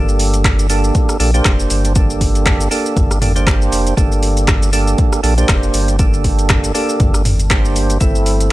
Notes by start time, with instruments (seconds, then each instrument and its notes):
Already playing: sub bass G1, tonewheel organ A#3 D4 G4 A4
0.08 shaker
0.19 open hi-hat, shaker
0.34 closed hi-hat, shaker
0.44 kick, cross-stick, clap, closed hi-hat, mid tom, shaker
0.59 closed hi-hat, shaker
0.70 tonewheel organ A#3 D4 G4 A4, open hi-hat, shaker
0.84 shaker
0.95 kick, closed hi-hat, shaker
1.09 cross-stick, shaker
1.20 sub bass A#1, tonewheel organ A#3 D4 G4 A4, open hi-hat, shaker
1.34 tonewheel organ A#3 D4 G4 C5, closed hi-hat, shaker
1.45 sub bass F1, kick, cross-stick, clap, shaker
1.60 shaker
1.70 sub bass G1, open hi-hat, shaker
1.85 closed hi-hat, shaker
1.95 tonewheel organ A#3 D4 G4 A4, kick, closed hi-hat, shaker
2.10 shaker
2.21 kick, open hi-hat, shaker
2.35 closed hi-hat, shaker
2.46 kick, cross-stick, clap, closed hi-hat, mid tom, shaker
2.60 closed hi-hat, shaker
2.71 tonewheel organ A#3 D4 G4 A4, open hi-hat, shaker
2.86 shaker
2.97 sub bass G1, kick, closed hi-hat, mid tom, shaker
3.11 cross-stick, shaker
3.22 tonewheel organ A#3 D4 G4 A4, mid tom, open hi-hat, shaker
3.36 tonewheel organ A#3 D4 G4 C5, closed hi-hat, shaker
3.47 kick, cross-stick, clap, shaker
3.62 shaker
3.72 sub bass F1, open hi-hat, shaker
3.87 closed hi-hat, shaker
3.97 sub bass G1, tonewheel organ A#3 D4 G4 A4, kick, closed hi-hat, shaker
4.12 shaker
4.23 open hi-hat, shaker
4.37 closed hi-hat, shaker
4.48 kick, cross-stick, clap, closed hi-hat, mid tom, shaker
4.62 closed hi-hat, shaker
4.73 tonewheel organ A#3 D4 G4 A4, open hi-hat, shaker
4.87 shaker
4.98 kick, closed hi-hat, shaker
5.13 cross-stick, shaker
5.23 sub bass A#1, tonewheel organ A#3 D4 G4 A4, open hi-hat, shaker
5.38 tonewheel organ A#3 D4 G4 C5, closed hi-hat, shaker
5.49 sub bass F1, kick, cross-stick, clap, shaker
5.63 shaker
5.74 sub bass G1, open hi-hat, shaker
5.88 closed hi-hat, shaker
5.99 tonewheel organ A#3 D4 G4 A4, kick, closed hi-hat, shaker
6.13 shaker
6.24 kick, open hi-hat, shaker
6.39 closed hi-hat, shaker
6.50 kick, cross-stick, clap, closed hi-hat, mid tom, shaker
6.64 closed hi-hat, shaker
6.74 tonewheel organ A#3 D4 G4 A4, open hi-hat, shaker
6.89 shaker
7.00 sub bass G1, kick, closed hi-hat, mid tom, shaker
7.14 cross-stick, shaker
7.25 mid tom, open hi-hat, shaker
7.40 closed hi-hat, shaker
7.50 tonewheel organ A#3 D4 G4 C5, kick, cross-stick, clap, shaker
7.65 shaker
7.76 open hi-hat, shaker
7.90 closed hi-hat, shaker
8.00 sub bass G1, tonewheel organ A3 C4 E4 A4, kick, closed hi-hat, shaker
8.15 shaker
8.26 open hi-hat, shaker
8.40 closed hi-hat, shaker